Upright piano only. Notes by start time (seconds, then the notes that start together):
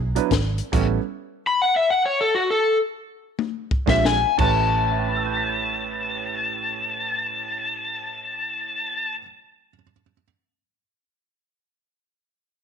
0.15 F#3 B3 D4 E4 B4
0.72 G3 B3 C#4 E4 A4
3.86 G#3 C4 D4 F4 G4
4.38 A2 A3 C#4 G4 B4
4.92 E5
4.99 G5
5.07 B5
5.16 E6
5.26 G6
5.37 B6
5.49 E7